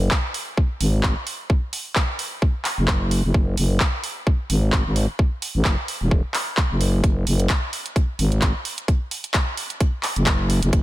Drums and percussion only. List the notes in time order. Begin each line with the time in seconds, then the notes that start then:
0.11 kick, clap
0.34 open hi-hat
0.57 kick
0.81 open hi-hat
1.03 kick, clap
1.27 open hi-hat
1.50 kick
1.73 open hi-hat
1.96 kick, clap
2.19 open hi-hat
2.42 kick
2.65 clap, open hi-hat
2.88 kick, clap
3.11 open hi-hat
3.34 kick
3.57 open hi-hat
3.80 kick, clap
4.04 open hi-hat
4.27 kick
4.50 open hi-hat
4.72 kick, clap
4.96 open hi-hat
5.19 kick
5.42 open hi-hat
5.65 kick, clap
5.88 open hi-hat
6.11 kick
6.34 clap, open hi-hat
6.57 kick, clap
6.81 open hi-hat
7.04 kick, closed hi-hat
7.27 open hi-hat
7.40 closed hi-hat
7.49 kick, clap, closed hi-hat
7.73 open hi-hat
7.86 closed hi-hat
7.96 kick, closed hi-hat
8.19 open hi-hat
8.32 closed hi-hat
8.42 kick, clap, closed hi-hat
8.65 open hi-hat
8.78 closed hi-hat
8.88 kick, closed hi-hat
9.11 open hi-hat
9.24 closed hi-hat
9.34 kick, clap, closed hi-hat
9.57 open hi-hat
9.70 closed hi-hat
9.80 kick, closed hi-hat
10.03 clap, open hi-hat
10.16 closed hi-hat
10.26 kick, clap, closed hi-hat
10.50 open hi-hat
10.63 closed hi-hat
10.73 kick, closed hi-hat